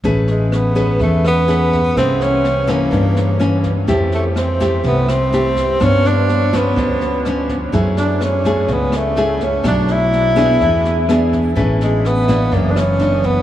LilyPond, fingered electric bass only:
\new Staff \with { instrumentName = "Fingered electric bass" } { \clef bass \time 4/4 \key a \major \tempo 4 = 125 a,,2 e,2 | c,2 g,2 | f,2 c,2 | g,2 d,2 |
fis,2 cis,2 | b,,2 e,2 | a,,2 fis,,2 | }